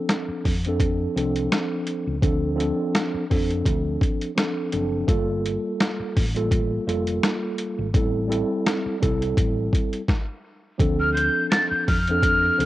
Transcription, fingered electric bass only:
0.28 muted fingered electric bass stroke
0.46 F2
1.16 C2
2.07 C#2
2.23 D2
3.14 muted fingered electric bass stroke
3.31 F2
3.66 D2
4.73 F#1
5.08 G1
6.00 muted fingered electric bass stroke
6.17 A1
6.87 F1
7.79 G#1
7.94 A1
8.86 muted fingered electric bass stroke
9.03 C2
9.37 A1
10.80 D2
11.71 muted fingered electric bass stroke
11.88 F2
12.59 C2

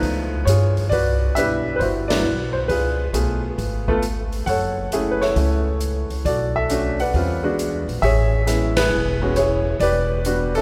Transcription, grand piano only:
Already playing: F3 A3 B3 D#4 F4 B4
0.45 F4 G#4 C#5
0.89 F#4 B4 D5
1.35 G3 B3 D4 E4 G4 B4 E5
1.76 B4 C5
1.82 E4 F#4
2.08 F#3 B3 D4 E4 F#4 B4 D5
2.53 C5
2.68 F4 G#4 B4
3.13 A3 B3 F4 G#4
3.88 A3 B3 F4 A4
4.46 A4 C#5 F#5
4.93 A3 C#4 E4 G#4
5.11 B4
5.22 E4 A4 C#5
5.37 A3 C#4 E4 A4
6.25 F#4 A4 D5
6.56 A4 E5
6.70 A3 C#4 D4 F#4
7.00 B4 D5 F#5
7.15 G3 C4 C#4 F4
7.43 G#3 B3 D4 F#4
8.02 G#4 C#5 E5
8.47 G#3 B3 C#4 E4
8.77 E4 G#4 B4
9.22 G#3 B3 C#4 F#4
9.36 E4 G#4 C#5
9.80 G4 B4 D5
10.26 G3 B3 D4 F#4
10.55 C#4 E4 A4

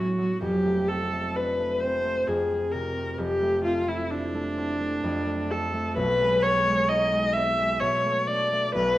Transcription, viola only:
Already playing: F#4
0.42 G4
0.88 A4
1.35 B4
1.80 C5
2.27 G#4
2.72 A#4
3.19 G4
3.64 F4
3.88 E4
4.11 D4
5.51 A4
5.97 B4
6.42 C#5
6.89 D#5
7.33 E5
7.80 C#5
8.28 D5
8.74 B4

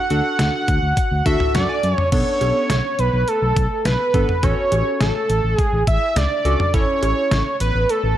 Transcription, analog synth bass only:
0.10 D2
0.39 D2
0.68 D2
0.82 D2
1.11 D2
1.26 D2
1.55 F#2
1.83 F#2
2.12 B1
2.41 B1
2.70 B1
2.99 B1
3.13 B1
3.42 B1
3.56 B1
3.85 B1
4.14 G#1
4.43 A1
4.72 A1
5.01 A1
5.29 A1
5.44 A1
5.73 A1
5.87 A1
6.16 C#2
6.45 C#2
6.74 A1
7.03 A1
7.31 A1
7.60 A1
7.75 A1
8.04 A1

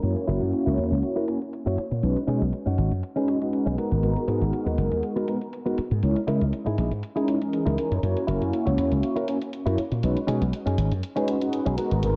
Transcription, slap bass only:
0.03 F#2
0.28 F#1
0.41 F#2
0.66 C#2
0.78 E2
0.91 C#2
1.66 F#2
1.78 muted slap bass stroke
1.91 A#2
2.03 B1
2.28 B2
2.41 B1
2.66 F#2
2.78 G#1
2.91 F#2
3.66 B1
3.91 G#1
4.03 G#1
4.28 G#2
4.41 G#1
4.66 D#2
4.78 F#1
4.91 D#2
5.78 muted slap bass stroke
5.91 G#2
6.03 C#2
6.28 C#3
6.41 C#2
6.66 G#2
6.78 A#1
6.91 G#2
7.66 C#2
7.91 F#2
8.03 F#2
8.28 F#1
8.41 F#2
8.67 C#2
8.78 E2
8.91 C#2
9.66 F#2
9.78 muted slap bass stroke
9.92 A#2
10.03 B1
10.28 B2
10.41 B1
10.66 F#2
10.78 G#1
10.91 F#2
11.66 B1
11.91 G#1
12.03 G#1

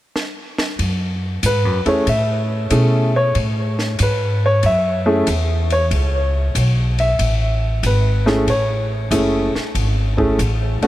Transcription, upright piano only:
1.46 B4
1.86 A3 C#4 E4 G#4 C#5
2.09 E5
2.71 A3 C#4 E4 G#4
3.16 C#5
4.02 B4
4.46 C#5
4.66 E5
5.06 A3 C#4 E4 G#4
5.72 C#5
7.00 E5
7.86 B4
8.26 A3 C#4 E4 G#4
8.50 C#5
9.11 A3 C#4 E4 G#4
10.17 A3 C#4 E4 G#4
10.82 A3 C#4 D4 F#4

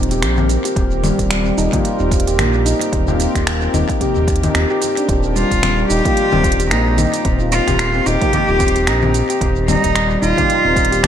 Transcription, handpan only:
0.11 G4
0.38 C4
0.65 G4
0.76 C4
1.04 G3
1.31 G3
1.58 D#4
1.73 F4
2.00 C4
2.27 G4
2.39 A#3
2.66 D#4
2.93 C4
3.08 F4
3.35 G4
3.62 C4
3.74 D#4
4.01 G4
4.28 G4
4.44 D#4
4.55 C4
4.70 G4
4.82 G4
4.97 D4
5.09 C4
5.36 G3
5.63 G3
5.90 D#4
6.05 F4
6.33 C4
6.60 G4
6.71 A#3
6.98 D#4
7.25 C4
7.41 F4
7.68 G4
7.95 C4
8.06 D#4
8.34 G4
8.61 C4
8.76 G4
9.03 C4
9.30 G4
9.41 C4
9.68 G3
9.95 G3
10.22 D#4
10.38 F4
10.65 C4
10.92 G4
11.03 A#3

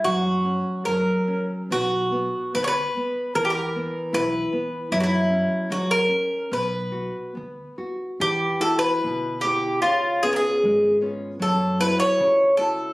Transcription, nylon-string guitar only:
0.06 F#3
0.45 C#4
0.85 F#3
1.27 C#4
1.70 B3
2.12 B3
2.54 B3
2.97 B3
3.36 E3
3.76 B3
4.13 E4
4.53 B3
4.92 F#3
5.30 C#4
5.70 F#3
6.08 C#4
6.51 B3
6.92 F#4
7.35 B3
7.78 F#4
8.20 E3
8.60 E4 F#4 G4
9.04 B2
9.44 E4 G4 F#5
9.84 C#3
10.23 B3 C#4 F4
10.64 G#3
11.01 B3 C#4 F4
11.39 F#3
11.80 E4 F#4 A4
12.20 C#3
12.58 E4 F#4 A4

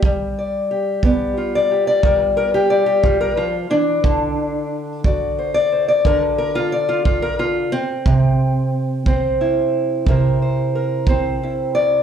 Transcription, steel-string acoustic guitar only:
0.05 G3
0.39 D5
0.71 G4
1.04 B3 D5
1.38 F4
1.55 D5
1.71 G4
1.87 D5
2.03 G3 A#4
2.37 A#4
2.54 G4
2.70 D5
2.86 G4
3.03 G3 F4
3.21 A#4
3.37 F3 F4
3.70 E3 D4
4.04 D3
5.05 F#4 D5
5.39 C5
5.54 D5
5.72 C5
5.88 D5
6.05 D3 A#4
6.38 A#4
6.55 F4
6.72 D5
6.89 F4
7.05 F4
7.22 A#4
7.39 F4
7.72 C4
8.06 C3
9.07 C4 C5
9.41 E4
10.08 C3 E4 A#4 C5
10.42 C5
10.75 A#4
11.09 C4 C5
11.43 E4
11.75 D5

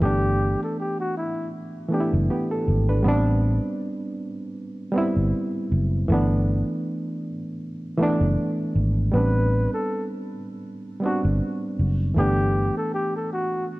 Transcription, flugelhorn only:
0.03 G4
0.63 A4
0.80 G4
1.00 F#4
1.17 E4
1.93 G4
9.14 B4
9.74 A4
11.05 F#4
12.19 G4
12.77 A4
12.94 G4
13.16 A4
13.33 F#4

